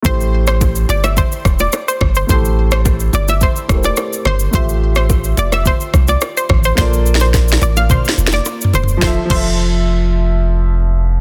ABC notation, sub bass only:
X:1
M:4/4
L:1/16
Q:1/4=107
K:Aphr
V:1 name="Sub bass" clef=bass
A,,,6 G,,,3 z E,,,2 z2 G,,,2 | A,,,6 G,,,3 z E,,,2 z2 G,,,2 | A,,,6 F,,,3 z C,,2 z2 A,,,2 | B,,,6 A,,,3 z F,,,2 z2 E,,,2 |
F,,,2 F,,,12- F,,,2 |]